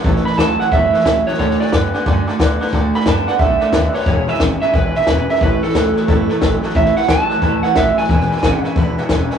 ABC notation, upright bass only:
X:1
M:4/4
L:1/8
Q:"Swing" 1/4=179
K:A
V:1 name="Upright bass" clef=bass
A,,, z C,, z F,,, z C,, z | D,, z F,, z F,, z D,, z | D,, z F,, z B,,, z ^D,, z | E,,, z G,,, z A,,, z E,,, z |
A,,, z C,, z F,,, z A,,, z | A,,, z C,, z D,, z A,,, z | E,,, z G,,, z D,, z E,,, z |]